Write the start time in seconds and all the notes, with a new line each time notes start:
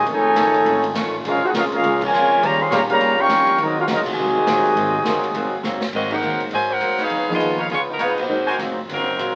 0.06 F1 F2 C#3 D#3 A3 C#4 F4, ride
0.10 D#4 A4 C#5 G#5
0.36 F#1 F2 D#3 A3 C#4, snare, hi-hat pedal, ride
0.54 ride
0.65 G#1 F2 D#3 A3 C#4, ride
0.84 ride
0.95 A1 F2 D#3 A3 C#4, snare, hi-hat pedal, ride
1.24 A#1 A#2 C#3 F3 G#3 A#3 C#4 F4 G#4 A#4 F5, ride
1.43 D#4 F#4 G#4 C5 F#5, muted upright bass stroke
1.53 C2 A#2 F3 G#3 C#4 F4 G#4 A#4 F5, snare, hi-hat pedal, ride
1.72 G#3 C#4 F4 G#4 A#4 F5, ride
1.83 C#2 A#2 F3 G#3 C#4, ride
2.01 C#3 F3 G#3 F4 A#4 C#5 G#5, kick, crash
2.11 F2 A#2 F3 G#3 C#4, hi-hat pedal
2.40 D#2 C#3 D#3 G3 A#3 C#4 F4 G4 C#5 F5 A#5, ride
2.60 C4 G#4 C#5 F5 C6
2.70 A#2 C#3 D#3 G3 A#3 C#4 F4 G4 C#5 F5 A#5, snare, hi-hat pedal, ride
2.89 C#3 G3 A#3 G4 C#5 F5 A#5, ride
2.99 G2 D#3 C#4 F4, ride
3.03 G4
3.17 G3 A#3 C#4 A#4 F5 G5 C#6
3.29 F2 D#3 C#4 F4 G4, snare, hi-hat pedal, ride
3.47 ride
3.57 D#2 G#2 C3 F#3 G#3 A#3 C4 D#4 F#4, ride
3.61 A#3 C4 F#4 A#4 D#5
3.78 C#4 F4 F#4 A#4 F5
3.88 C#2 G#2 F#3 A#3 C4 D#4, snare, hi-hat pedal, ride
3.92 C4 F#4 A#4 D#5
4.06 C3 D#3 G#3, kick, crash
4.11 F#4 C5 D#5 G#5
4.17 C2 G#2 F#3 A#3 C4
4.47 A#1 G#2 F#3 A#3 C4, snare, hi-hat pedal, ride
4.64 muted upright bass stroke, ride
4.75 G#1 G#2 F#3 A#3 C4, ride
5.04 F#1 G#2 F#3 A#3 C4, snare, hi-hat pedal, ride
5.24 ride
5.34 F1 G#2 F#3 A#3 C4, ride
5.51 muted upright bass stroke
5.63 F#1 G#2 F#3 A#3 C4, snare, hi-hat pedal
5.81 snare
5.92 G#1 G#2 F#3 A#3 C4 F#4 A#4 D#5, kick, crash
6.10 A#3 D#4 G#4 A#4 C5 F#5, kick, crash
6.22 D#2 G#2 F#3 A#3 C4, hi-hat pedal
6.31 C2
6.40 G#1, ride
6.51 G#2 F#3 A#3 F#4 C5 D#5 G#5, ride
6.55 C4
6.71 D#4 A#4 C5 F#5
6.80 F#2 G#2 F#3 A#3 C4, hi-hat pedal, ride
6.98 D#4 B4 C#5 F5, snare, ride
7.02 G#4 B4 F5
7.10 F2 C#3 F3 B3 D#4, ride
7.29 F3 A#3 B3 D#4 F4 G#4
7.33 D#5
7.39 D#2 C#3 F3 B3 D#4, hi-hat pedal, ride
7.58 D#4 B4 C#5 F5, ride
7.69 C#2 C#3 F3 B3 D#4 F4 G#4 C#5, ride
7.89 F#3 B3 D#4 A#4
7.98 A#1 C#3 F3 B3 D#4 B4 C#5 F5, hi-hat pedal, ride
8.03 G#3 D#4 F4 B4
8.17 A#3 D#4 F#4 C5, kick, crash
8.29 G#1 G#2 F#3 A#3 C4 D#4 G#4 C5
8.47 F#4 A#4 C5 G#5
8.58 F1 G#2 F#3 A#3 C4, snare, hi-hat pedal, ride
8.77 kick
8.88 F#1 G#2 F#3 A#3 C4, ride
8.93 F#3 C4 D#4 A#4
9.17 A#1 G#2 F#3 A#3 C4, hi-hat pedal, ride